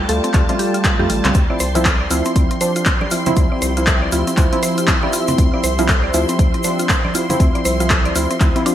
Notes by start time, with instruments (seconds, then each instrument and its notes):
Already playing: ambient pad A4 D5 G5, string machine A5
0.09 analog synth bass D2, synth keys G3 A3 F4, synth arpeggio sound A4, open hi-hat
0.24 synth arpeggio sound C4, closed hi-hat
0.34 analog synth bass D2, synth keys G3 A3 F4, synth arpeggio sound C4, kick, clap, closed hi-hat
0.49 synth keys G3 A3 F4, synth arpeggio sound C4, closed hi-hat, high conga
0.59 synth arpeggio sound G4, open hi-hat
0.74 synth arpeggio sound F4, closed hi-hat
0.84 synth arpeggio sound G4, kick, clap, closed hi-hat
0.99 analog synth bass F2, synth keys G3 A3 F4, synth arpeggio sound G4, high conga
1.10 analog synth bass A1, synth arpeggio sound F4, open hi-hat
1.25 analog synth bass C2, synth arpeggio sound C4, clap, closed hi-hat, low conga
1.34 analog synth bass D2, synth arpeggio sound C4, ambient pad G4, string machine C6, kick, closed hi-hat, shaker
1.50 synth keys F3 C4 E4, synth arpeggio sound D5
1.60 analog synth bass C2, synth arpeggio sound C5, open hi-hat, shaker
1.75 synth keys F3 C4 E4, synth arpeggio sound F4, closed hi-hat, high conga, shaker
1.81 ambient pad E5, clap
1.85 synth arpeggio sound A4, kick, closed hi-hat, shaker
2.01 synth arpeggio sound D5
2.10 analog synth bass D2, synth keys F3 C4 E4, synth arpeggio sound F4, open hi-hat, shaker
2.25 synth arpeggio sound C4, ambient pad C5, closed hi-hat, shaker
2.36 analog synth bass D2, synth arpeggio sound C4, kick, closed hi-hat, shaker
2.51 synth arpeggio sound C4, closed hi-hat
2.61 synth keys F3 C4 D4, synth arpeggio sound C5, open hi-hat, shaker
2.76 synth arpeggio sound F4, closed hi-hat, shaker
2.86 synth arpeggio sound C4, kick, clap, closed hi-hat, shaker
3.01 synth arpeggio sound D5, high conga
3.11 synth keys F3 C4 E4, synth arpeggio sound F4, open hi-hat, shaker
3.26 synth keys F3 C4 E4, synth arpeggio sound C4, closed hi-hat, high conga, low conga, shaker
3.36 analog synth bass D2, synth arpeggio sound C4, kick, closed hi-hat, shaker
3.51 synth keys F3 C4 E4, synth arpeggio sound D5
3.62 analog synth bass C2, synth arpeggio sound C5, open hi-hat, shaker
3.77 synth keys F3 C4 E4, synth arpeggio sound F4, closed hi-hat, shaker
3.87 synth arpeggio sound A4, kick, clap, closed hi-hat, shaker
4.02 synth arpeggio sound D5
4.12 analog synth bass D2, synth keys F3 C4 E4, synth arpeggio sound F4, open hi-hat, shaker
4.27 synth arpeggio sound C4, closed hi-hat, shaker
4.37 analog synth bass D2, synth keys F3 C4 E4, synth arpeggio sound C4, kick, clap, closed hi-hat, shaker
4.52 synth keys F3 C4 E4, synth arpeggio sound C4, closed hi-hat, high conga
4.63 synth arpeggio sound C5, open hi-hat, shaker
4.78 synth arpeggio sound F4, closed hi-hat, shaker
4.87 synth arpeggio sound C4, kick, clap, closed hi-hat, shaker
5.03 synth keys F3 C4 E4, synth arpeggio sound D5, high conga
5.13 synth arpeggio sound F4, open hi-hat, shaker
5.28 synth arpeggio sound C4, closed hi-hat, low conga, shaker
5.38 analog synth bass D2, synth arpeggio sound C4, kick, closed hi-hat, shaker
5.53 synth keys F3 C4 E4, synth arpeggio sound D5
5.63 analog synth bass C2, synth arpeggio sound C5, open hi-hat, shaker
5.78 synth keys F3 C4 E4, synth arpeggio sound F4, closed hi-hat, high conga, shaker
5.88 synth arpeggio sound A4, kick, clap, closed hi-hat, shaker
6.04 synth arpeggio sound D5
6.14 analog synth bass D2, synth keys F3 C4 E4, synth arpeggio sound F4, open hi-hat, shaker
6.29 synth arpeggio sound C4, closed hi-hat, shaker
6.39 analog synth bass D2, synth arpeggio sound C4, kick, closed hi-hat, shaker
6.54 synth arpeggio sound C4, closed hi-hat
6.63 synth keys F3 C4 D4, synth arpeggio sound C5, open hi-hat, shaker
6.79 synth arpeggio sound F4, closed hi-hat, shaker
6.89 synth arpeggio sound C4, kick, clap, closed hi-hat, shaker
7.05 synth arpeggio sound D5, high conga
7.15 synth keys F3 C4 E4, synth arpeggio sound F4, open hi-hat, shaker
7.29 synth keys F3 C4 E4, synth arpeggio sound C4, closed hi-hat, high conga, low conga, shaker
7.40 analog synth bass D2, synth arpeggio sound C4, kick, closed hi-hat, shaker
7.55 synth keys F3 C4 E4, synth arpeggio sound D5, closed hi-hat
7.65 analog synth bass C2, synth arpeggio sound C5, open hi-hat, shaker
7.80 synth keys F3 C4 E4, synth arpeggio sound F4, closed hi-hat, shaker
7.90 synth arpeggio sound A4, kick, clap, closed hi-hat, shaker
8.05 synth arpeggio sound D5, closed hi-hat
8.15 analog synth bass D2, synth keys F3 C4 E4, synth arpeggio sound F4, open hi-hat, shaker
8.30 synth arpeggio sound C4, closed hi-hat, shaker
8.40 analog synth bass D2, synth keys F3 C4 E4, synth arpeggio sound C4, kick, clap, closed hi-hat, shaker
8.56 synth keys F3 C4 E4, synth arpeggio sound C4, closed hi-hat, high conga
8.66 synth keys F3 C4 F4, synth arpeggio sound D4, open hi-hat, shaker